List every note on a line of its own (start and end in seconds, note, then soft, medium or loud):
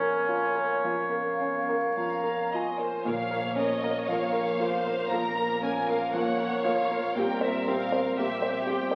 0.00 0.81 A#2 soft
0.00 0.17 F3 soft
0.00 2.74 A#3 soft
0.00 1.41 C#4 soft
0.00 2.56 C#4 medium
0.00 0.55 A#4 soft
0.00 0.88 C#5 soft
0.00 2.74 C#5 soft
0.29 0.74 F4 soft
0.55 1.01 A#4 soft
0.84 1.30 F3 soft
0.84 1.99 F5 soft
1.10 1.57 A#4 soft
1.41 1.87 C#4 soft
1.69 2.14 A#4 soft
1.97 2.42 F3 soft
1.97 2.50 F5 medium
1.97 2.58 A#5 soft
2.24 2.69 A#4 soft
2.52 2.97 F4 soft
2.52 2.80 D#5 soft
2.52 3.09 G#5 soft
2.79 3.07 A#4 soft
2.79 3.07 C5 soft
3.05 3.97 A#1 medium
3.05 5.07 A#2 soft
3.05 4.57 A#2 medium
3.05 4.05 F3 soft
3.05 4.04 A#3 soft
3.05 3.16 A#3 soft
3.05 3.15 A#4 soft
3.05 4.09 C#5 medium
3.05 3.55 F5 medium
3.31 3.73 A#4 soft
3.56 3.67 A#3 soft
3.56 3.98 C#4 soft
3.56 3.66 A#4 soft
3.56 4.09 D#5 medium
3.84 4.25 A#4 soft
4.08 5.00 A#1 medium
4.08 5.09 F3 soft
4.08 4.50 F3 soft
4.08 5.09 A#3 soft
4.08 4.18 A#3 soft
4.08 4.19 A#4 soft
4.08 4.61 C#5 soft
4.08 5.12 F5 medium
4.33 4.75 A#4 soft
4.60 4.69 A#3 soft
4.60 5.01 F4 soft
4.60 4.70 A#4 soft
4.60 5.12 C5 soft
4.87 5.28 A#4 soft
5.11 6.02 A#1 soft
5.11 6.02 A#2 soft
5.11 5.53 F3 soft
5.11 7.13 F3 soft
5.11 5.20 A#3 soft
5.11 7.14 A#3 soft
5.11 6.15 A#4 soft
5.11 5.21 A#4 soft
5.11 5.63 A#5 medium
5.36 5.78 A#4 soft
5.63 5.73 A#3 soft
5.63 6.04 C#4 soft
5.63 5.72 A#4 soft
5.63 5.88 G#5 medium
5.88 6.30 A#4 soft
5.88 6.14 F5 medium
6.13 7.05 A#1 soft
6.13 7.05 A#2 soft
6.13 6.55 F3 soft
6.13 6.22 A#3 soft
6.13 6.22 A#4 soft
6.13 7.17 C#5 medium
6.13 6.65 F#5 medium
6.40 6.81 A#4 soft
6.63 6.75 A#3 soft
6.63 7.06 F4 soft
6.63 7.15 F5 medium
6.68 6.76 A#4 soft
6.92 7.17 A#4 soft
7.15 8.06 A#1 medium
7.15 8.95 A#2 medium
7.15 8.06 A#2 medium
7.15 8.16 G3 soft
7.15 7.26 C4 soft
7.15 8.17 C4 soft
7.15 7.26 G4 soft
7.15 8.16 A#4 medium
7.15 7.42 G5 medium
7.41 7.82 C5 soft
7.41 7.68 E5 medium
7.68 8.08 C4 soft
7.68 7.76 C4 soft
7.68 7.76 G4 soft
7.68 8.18 F5 medium
7.92 8.32 C5 soft
8.17 8.95 A#1 medium
8.17 8.95 A#2 soft
8.17 8.95 G3 soft
8.17 8.57 A#3 soft
8.17 8.26 C4 soft
8.17 8.95 C4 soft
8.17 8.26 G4 soft
8.17 8.95 G4 soft
8.17 8.66 E5 medium
8.42 8.82 C5 soft
8.67 8.76 C4 soft
8.67 8.95 G4 soft
8.67 8.77 G4 soft
8.67 8.95 G5 medium
8.91 8.95 C5 soft